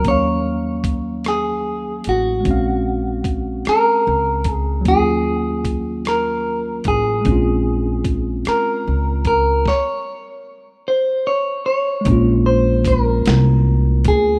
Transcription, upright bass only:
\new Staff \with { instrumentName = "Upright bass" } { \clef bass \time 6/8 \key bes \minor \tempo 4. = 50 ees,2~ ees,8 a,,8 | bes,,4. r8 des,4 | ees,2~ ees,8 a,,8 | bes,,4. r8 des,4 |
r2. | bes,,4. c,4 d,8 | }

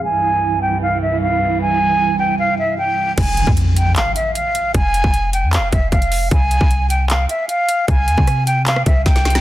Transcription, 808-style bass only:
\new Staff \with { instrumentName = "808-style bass" } { \clef bass \time 4/4 \key f \minor \tempo 4 = 153 r1 | r1 | f,,8. f,4~ f,16 aes,,8 r4. | f,,8. f,,4 f,16. f,,16. f,,8 f,,4 |
c,8. c,4.~ c,16 r4. | c,8 e,16 c4.~ c16 c,8 c,4 | }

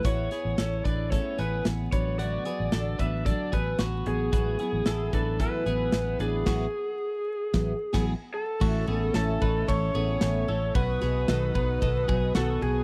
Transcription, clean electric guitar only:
\new Staff \with { instrumentName = "Clean electric guitar" } { \time 4/4 \key e \mixolydian \tempo 4 = 112 <b fis'>8 <b gis'>8 <cis' a'>8 <d' b'>8 <cis' a'>8 <b gis'>4 <d' b'>8 | <b fis'>8 <b gis'>8 <d' a'>8 <d' b'>8 <d' a'>8 <b gis'>8 <b fis'>4 | <b fis'>8 <b gis'>8 <e' a'>8 <d' b'>8 <e' a'>8 <b gis'>4 <d' b'>8 | <b fis'>8 r2 r16 <b gis'>8 r8. |
\key a \lydian <a fis'>8 <b gis'>8 <cis' a'>8 <dis' b'>8 <cis' a'>8 <b gis'>4 <cis' a'>8 | <b fis'>8 <b gis'>8 <dis' a'>8 <dis' b'>8 <dis' a'>8 <b gis'>8 <b fis'>4 | }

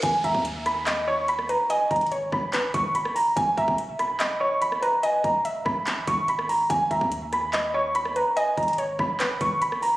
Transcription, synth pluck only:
\new Staff \with { instrumentName = "Synth pluck" } { \time 4/4 \key gis \minor \tempo 4 = 144 r8 e''8 r4 dis''8 cis''4 b'8 | dis''4 cis''4 b'2 | r8 e''8 r4 dis''8 cis''4 b'8 | dis''4 e''2 r4 |
r8 e''8 r4 dis''8 cis''4 b'8 | dis''4 cis''4 b'2 | }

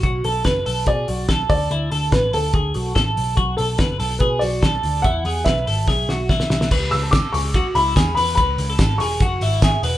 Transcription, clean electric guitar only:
\new Staff \with { instrumentName = "Clean electric guitar" } { \time 4/4 \key cis \phrygian \tempo 4 = 144 fis'8 a'8 b'8 a'8 gis'8 fis'8 a'4 | e'8 a'8 b'8 a'8 gis'8 fis'8 a'4 | fis'8 a'8 b'8 a'8 gis'8 fis'8 a'4 | e'8 gis'8 b'8 a'8 gis'8 fis'8 e'4 |
b'8. a'8. gis'8 fis'8 e'8 gis'8 b'8 | b'8. a'8. gis'8 fis'8 e'8 gis'8 b'8 | }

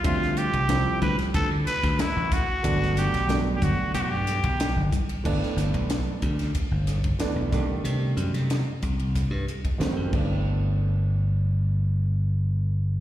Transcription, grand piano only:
\new Staff \with { instrumentName = "Grand piano" } { \time 4/4 \key g \major \tempo 4 = 92 <f g c' e''>4 <f g c' e'>4. r4. | <fis a b d'>4 <fis a b d'>4. r4. | <e a b d'>4. r4. <e a b d'>8 <ees g a d'>8~ | <ees g a d'>4 r2 <ees g a c'>8 <e a b d'>8~ |
<e a b d'>1 | }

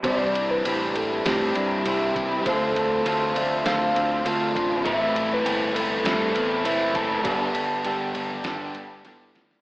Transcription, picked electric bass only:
\new Staff \with { instrumentName = "Picked electric bass" } { \clef bass \time 4/4 \key c \major \tempo 4 = 100 c,4 a,,4 a,8 g,8 c,4 | d,8 d,8 d,8 d,8 d,8 d,8 d,8 a,,8 | a,,4 g,,4 g,8 e,8 fis,,4 | g,,8 g,,8 g,,8 g,,8 g,,8 g,,8 g,,8 d,8 | }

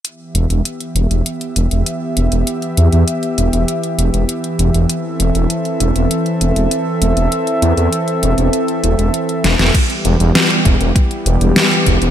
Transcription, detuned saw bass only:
\new Staff \with { instrumentName = "Detuned saw bass" } { \clef bass \time 4/4 \key e \minor \tempo 4 = 99 r8 e,,16 e,,16 r8 e,,16 e,,16 r8 e,,16 e,,16 r8 e,,16 e,,16 | r8 e,16 e,16 r8 e,,16 e,,16 r8 e,,16 e,,16 r8 e,,16 e,,16 | r8 e,,16 e,,16 r8 e,,16 e,,16 r8 e,,16 e,,16 r8 e,,16 e,,16 | r8 e,16 e,16 r8 e,,16 e,,16 r8 e,,16 e,,16 r8 e,,16 e,,16 |
r8 e,,16 e,,16 r8 e,,16 e,,16 r8 e,,16 e,,16 r8 e,,16 e,,16 | }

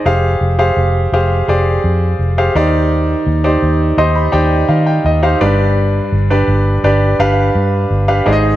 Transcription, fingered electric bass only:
\new Staff \with { instrumentName = "Fingered electric bass" } { \clef bass \time 4/4 \key g \phrygian \tempo 4 = 84 f,,8 f,,8 f,,8 f,,8 f,,8 f,8 f,,8 ees,8~ | ees,8 ees,8 ees,8 ees,8 ees,8 ees8 ees,8 g,,8~ | g,,8 g,,8 g,,8 g,,8 g,,8 g,8 g,,8 aes,,8 | }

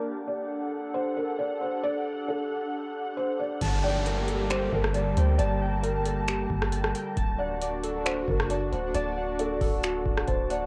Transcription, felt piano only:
\new Staff \with { instrumentName = "Felt piano" } { \time 4/4 \key g \minor \tempo 4 = 135 r8 d''4. c''8 bes'8 d''8 c''8 | d''4 a'2 c''8 d''8 | r8 d''4. c''8 bes'8 d''8 c''8 | d''4 bes'4 r2 |
r8 d''4. c''8 bes'8 d''8 c''8 | d''4 a'2 c''8 d''8 | }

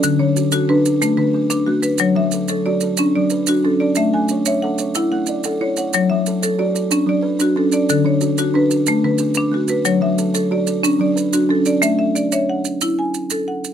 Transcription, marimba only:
\new Staff \with { instrumentName = "Marimba" } { \time 12/8 \key a \major \tempo 4. = 122 << { <a' d''>8 cis''4. b'4. b'4. fis'8 b'8 | cis''8 e''4. d''4. d''4. a'8 d''8 | e''8 gis''4. fis''4. fis''4. cis''8 fis''8 | cis''8 e''4. d''4. d''4. a'8 d''8 |
a'8 cis''4. b'4. b'4. fis'8 b'8 | cis''8 e''4. d''4. d''4. a'8 d''8 | e''8 e''8 d''8 e''8 fis''4. gis''4. fis''4 | } \\ { d4 r8 fis'4 r8 a4 r8 d'4 r8 | fis4 r8 a'4 r8 cis'4 r8 fis'4 r8 | a4 r8 cis''4 r8 e'4 r8 a'4 r8 | fis4 r8 a'4 r8 cis'4 r8 fis'4 r8 |
d4 r8 fis'4 r8 a4 r8 d'4 r8 | fis4 r8 a'4 r8 cis'4 r8 fis'4 r8 | a4 r8 cis''4 r8 e'4 r8 a'4 r8 | } >> }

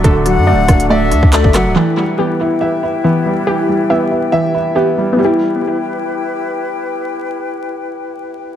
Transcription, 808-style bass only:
\new Staff \with { instrumentName = "808-style bass" } { \clef bass \time 4/4 \key e \minor \tempo 4 = 140 d,,8. fis,16. d,,16. d,,4 d,16 d,8 fis,,8 c,,16 | r1 | r1 | r1 |
r1 | }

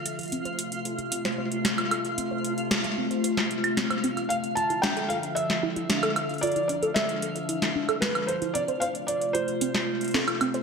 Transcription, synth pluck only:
\new Staff \with { instrumentName = "Synth pluck" } { \time 4/4 \key f \major \tempo 4 = 113 a'16 f'16 c'16 c''16 r8 a'16 f'16 c'16 c''16 c''16 r8. a'16 f'16 | c'16 c''16 r8 a'16 f'16 c'16 c''16 c''16 r8. c'16 c''16 c'16 f'16 | r8 f'16 e'16 d'16 a'16 a'16 r8. e'16 e'16 d'16 a'16 r8 | f'16 e'16 d'16 a'16 a'16 r8. e'16 e'16 d'16 a'16 r8 f'16 e'16 |
c'16 c''16 c''16 r8. f'16 f'16 c'16 c''16 r8 a'16 f'16 c'16 c''16 | }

